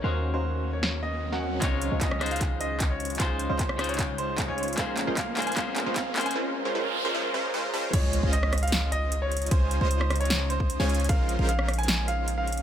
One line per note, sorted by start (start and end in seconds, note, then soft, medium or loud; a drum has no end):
0.00 1.60 D#2 medium
0.00 1.59 D#3 medium
0.00 1.60 D#3 medium
0.00 1.60 F#3 medium
0.00 1.59 A#3 medium
0.00 1.60 C#4 medium
0.00 0.31 C#4 medium
0.00 0.31 F#4 medium
0.00 0.31 A#4 medium
0.00 0.30 C5 medium
0.00 0.31 D#5 medium
0.00 1.60 F5 medium
0.00 0.31 G#5 loud
0.00 riser medium
0.05 1.60 C#4 medium
0.05 1.60 F#4 medium
0.34 1.30 C#4 medium
0.34 1.30 F#4 medium
0.34 1.30 A#4 medium
0.34 0.68 C5 medium
0.34 1.30 D#5 medium
0.34 1.30 F5 medium
0.73 0.99 C#5 medium
0.83 finger snap medium
0.83 snare loud
1.03 1.29 D#5 medium
1.32 1.60 C#4 medium
1.32 1.60 F#4 medium
1.32 1.60 A#4 medium
1.32 1.60 D#5 medium
1.32 1.58 F#5 medium
1.32 1.60 G#5 loud
1.32 snare soft
1.60 1.90 C#2 loud
1.60 2.18 C#3 medium
1.60 4.74 C#3 medium
1.60 2.18 G#3 medium
1.60 1.89 G#3 medium
1.60 2.19 D#4 medium
1.60 4.74 D#4 medium
1.60 4.74 F4 medium
1.60 2.19 F4 medium
1.60 1.97 C#5 medium
1.60 2.20 C#5 medium
1.60 4.74 D#5 medium
1.60 kick medium
1.60 clap soft
1.60 closed hi-hat medium
1.60 riser medium
1.82 closed hi-hat medium
1.92 3.18 C#2 loud
1.92 3.17 G#3 medium
1.92 3.17 C#4 medium
1.92 3.17 F4 medium
1.92 3.17 C5 medium
1.92 3.17 D#5 loud
2.01 2.27 D#5 medium
2.01 kick loud
2.01 clap soft
2.01 closed hi-hat medium
2.11 cross-stick medium
2.19 3.16 C#3 medium
2.19 3.17 G#3 medium
2.19 3.17 D#4 medium
2.19 3.18 F4 medium
2.19 3.18 C5 medium
2.19 cross-stick medium
2.19 closed hi-hat soft
2.26 closed hi-hat medium
2.31 2.57 F5 medium
2.31 closed hi-hat medium
2.36 closed hi-hat medium
2.41 kick loud
2.41 clap medium
2.41 closed hi-hat medium
2.61 2.87 D#5 medium
2.61 closed hi-hat medium
2.80 kick loud
2.80 clap medium
2.80 closed hi-hat medium
2.90 3.16 C#5 medium
3.00 closed hi-hat soft
3.05 closed hi-hat medium
3.10 closed hi-hat soft
3.15 3.76 C#3 medium
3.15 3.76 G#3 medium
3.15 closed hi-hat medium
3.20 3.48 C#2 loud
3.20 3.47 G#3 medium
3.20 3.47 C#4 medium
3.20 3.77 D#4 medium
3.20 3.47 F4 medium
3.20 3.77 F4 medium
3.20 3.47 C5 medium
3.20 3.46 C5 medium
3.20 3.78 C5 medium
3.20 3.47 G#5 loud
3.20 kick medium
3.20 clap medium
3.20 closed hi-hat medium
3.39 closed hi-hat medium
3.49 4.46 C#2 medium
3.49 4.46 G#3 medium
3.49 4.46 C#4 medium
3.49 4.46 F4 medium
3.49 4.46 C5 medium
3.49 3.84 C5 medium
3.49 4.46 D#5 medium
3.59 kick loud
3.59 clap medium
3.59 closed hi-hat medium
3.69 cross-stick medium
3.77 4.74 C#3 medium
3.77 4.75 G#3 medium
3.77 4.75 D#4 medium
3.77 4.76 F4 medium
3.77 cross-stick medium
3.77 closed hi-hat medium
3.81 4.76 C5 loud
3.81 closed hi-hat medium
3.89 4.15 C#5 medium
3.89 closed hi-hat soft
3.94 closed hi-hat medium
3.99 kick loud
3.99 clap medium
3.99 closed hi-hat medium
4.18 4.45 C5 medium
4.18 closed hi-hat medium
4.38 kick loud
4.38 clap medium
4.38 closed hi-hat medium
4.48 4.76 C#2 loud
4.48 4.75 G#3 medium
4.48 4.75 C#4 medium
4.48 4.75 F4 medium
4.48 4.75 C5 medium
4.48 4.74 C#5 medium
4.48 4.75 G#5 loud
4.58 closed hi-hat soft
4.63 closed hi-hat medium
4.68 closed hi-hat soft
4.73 5.34 A#2 medium
4.73 5.34 A#3 medium
4.73 closed hi-hat medium
4.78 5.05 A#1 medium
4.78 6.34 G#3 medium
4.78 5.05 G#3 medium
4.78 6.34 A#3 medium
4.78 6.34 C#4 medium
4.78 5.35 C#4 medium
4.78 5.05 C#4 medium
4.78 5.05 F4 medium
4.78 5.35 G#4 medium
4.78 5.05 A#4 medium
4.78 5.05 C5 loud
4.78 5.36 C5 medium
4.78 5.12 F5 medium
4.78 kick loud
4.78 clap medium
4.78 closed hi-hat medium
4.97 clap medium
4.97 closed hi-hat medium
5.07 5.55 A#1 loud
5.07 5.55 G#3 medium
5.07 5.55 C#4 medium
5.07 5.55 F4 medium
5.07 5.55 A#4 medium
5.07 5.55 C5 loud
5.17 5.43 F5 medium
5.17 kick loud
5.17 clap medium
5.17 closed hi-hat medium
5.35 5.53 A#2 medium
5.35 5.55 A#3 medium
5.35 5.55 C#4 medium
5.35 5.56 G#4 medium
5.35 5.56 C5 medium
5.35 clap medium
5.35 closed hi-hat soft
5.42 closed hi-hat medium
5.47 5.55 G#5 medium
5.47 closed hi-hat soft
5.52 6.12 A#2 medium
5.52 6.13 A#3 medium
5.52 closed hi-hat medium
5.57 5.84 A#1 medium
5.57 5.84 G#3 medium
5.57 5.84 C#4 medium
5.57 6.13 C#4 medium
5.57 5.84 F4 medium
5.57 6.14 G#4 medium
5.57 5.84 A#4 medium
5.57 5.84 C5 loud
5.57 6.14 C5 medium
5.57 5.91 F5 medium
5.57 kick loud
5.57 clap medium
5.57 closed hi-hat medium
5.76 clap medium
5.76 closed hi-hat medium
5.86 6.34 A#1 medium
5.86 6.34 G#3 medium
5.86 6.34 C#4 medium
5.86 6.34 F4 medium
5.86 6.34 A#4 medium
5.86 6.34 C5 loud
5.96 6.22 F5 medium
5.96 kick loud
5.96 clap medium
5.96 closed hi-hat medium
6.14 6.33 A#2 medium
6.14 6.34 A#3 medium
6.14 6.34 C#4 medium
6.14 6.34 G#4 medium
6.14 clap medium
6.14 closed hi-hat soft
6.18 6.35 C5 medium
6.18 closed hi-hat medium
6.26 6.34 G#5 medium
6.26 closed hi-hat soft
6.31 closed hi-hat medium
6.35 6.63 G#3 loud
6.35 6.63 C#4 medium
6.35 6.63 F4 medium
6.35 6.63 A#4 medium
6.35 6.63 C5 loud
6.35 noise sweep medium
6.65 6.73 G#3 medium
6.65 6.73 C#4 medium
6.65 6.73 F4 medium
6.65 6.73 A#4 medium
6.65 6.73 C5 loud
6.75 7.02 G#3 loud
6.75 7.02 C#4 medium
6.75 7.02 F4 medium
6.75 7.02 A#4 medium
6.75 7.02 C5 loud
7.05 7.13 G#3 medium
7.05 7.13 C#4 medium
7.05 7.13 F4 medium
7.05 7.13 A#4 medium
7.05 7.13 C5 loud
7.14 7.33 G#3 loud
7.14 7.33 C#4 medium
7.14 7.33 F4 medium
7.14 7.33 A#4 medium
7.14 7.33 C5 loud
7.34 7.52 G#3 loud
7.34 7.52 C#4 medium
7.34 7.52 F4 medium
7.34 7.52 A#4 medium
7.34 7.52 C5 loud
7.54 7.72 G#3 loud
7.54 7.72 C#4 medium
7.54 7.72 F4 medium
7.54 7.72 A#4 medium
7.54 7.72 C5 loud
7.74 7.92 G#3 loud
7.74 7.92 C#4 loud
7.74 7.92 F4 loud
7.74 7.92 A#4 loud
7.74 7.92 C5 loud
7.93 8.21 C#2 medium
7.93 11.06 C#3 medium
7.93 8.21 G#3 loud
7.93 8.21 C#4 medium
7.93 11.06 D#4 medium
7.93 8.21 F4 medium
7.93 11.06 F4 medium
7.93 8.21 C5 medium
7.93 8.28 C#5 loud
7.93 8.21 D#5 loud
7.93 11.06 D#5 medium
7.93 kick loud
7.93 closed hi-hat medium
7.93 crash loud
7.93 impact medium
8.13 closed hi-hat medium
8.23 9.49 C#2 loud
8.23 9.49 G#3 loud
8.23 9.49 C#4 medium
8.23 9.49 F4 medium
8.23 9.49 C5 medium
8.23 9.49 D#5 loud
8.33 8.59 D#5 loud
8.33 closed hi-hat medium
8.43 cross-stick medium
8.53 cross-stick medium
8.53 closed hi-hat medium
8.58 closed hi-hat medium
8.63 8.89 F5 medium
8.63 closed hi-hat medium
8.68 closed hi-hat medium
8.72 snare loud
8.72 closed hi-hat medium
8.92 9.18 D#5 loud
8.92 closed hi-hat medium
9.12 closed hi-hat medium
9.22 9.48 C#5 medium
9.32 closed hi-hat medium
9.37 closed hi-hat medium
9.42 closed hi-hat medium
9.46 closed hi-hat medium
9.51 9.79 C#2 loud
9.51 9.79 G#3 medium
9.51 9.79 C#4 medium
9.51 9.79 F4 medium
9.51 9.79 C5 medium
9.51 9.78 C5 medium
9.51 9.79 G#5 loud
9.51 kick loud
9.51 closed hi-hat medium
9.71 closed hi-hat medium
9.81 10.78 C#2 loud
9.81 10.78 G#3 medium
9.81 10.78 C#4 medium
9.81 10.78 F4 medium
9.81 10.78 C5 medium
9.81 10.16 C5 loud
9.81 10.78 D#5 medium
9.91 closed hi-hat medium
10.01 cross-stick medium
10.10 cross-stick medium
10.10 closed hi-hat medium
10.16 closed hi-hat medium
10.21 10.46 C#5 medium
10.21 closed hi-hat soft
10.25 closed hi-hat medium
10.30 snare loud
10.30 closed hi-hat medium
10.50 10.76 C5 medium
10.50 closed hi-hat medium
10.60 kick medium
10.70 closed hi-hat medium
10.80 11.11 C#2 loud
10.80 11.07 G#3 loud
10.80 11.07 C#4 medium
10.80 11.07 F4 medium
10.80 11.07 C5 medium
10.80 11.06 C#5 medium
10.80 11.07 G#5 loud
10.80 snare soft
10.89 closed hi-hat soft
10.95 closed hi-hat medium
11.00 closed hi-hat soft
11.04 closed hi-hat medium
11.09 11.37 A#1 loud
11.09 11.37 G#3 loud
11.09 12.62 G#3 medium
11.09 12.62 A#3 medium
11.09 12.62 C#4 medium
11.09 11.37 C#4 medium
11.09 11.37 F4 medium
11.09 11.37 A#4 medium
11.09 11.37 C5 loud
11.09 11.44 F5 loud
11.09 kick loud
11.09 closed hi-hat medium
11.29 closed hi-hat medium
11.39 12.62 A#1 loud
11.39 12.62 G#3 loud
11.39 12.62 C#4 medium
11.39 12.62 F4 medium
11.39 12.62 A#4 medium
11.39 12.62 C5 loud
11.49 11.75 F5 loud
11.49 closed hi-hat medium
11.59 cross-stick medium
11.68 cross-stick medium
11.68 closed hi-hat soft
11.73 closed hi-hat medium
11.78 12.04 G#5 medium
11.78 closed hi-hat soft
11.83 closed hi-hat medium
11.88 snare loud
11.88 closed hi-hat medium
12.08 12.34 F5 loud
12.08 closed hi-hat medium
12.28 closed hi-hat medium
12.38 12.62 F5 medium
12.47 closed hi-hat soft
12.52 closed hi-hat medium
12.57 closed hi-hat soft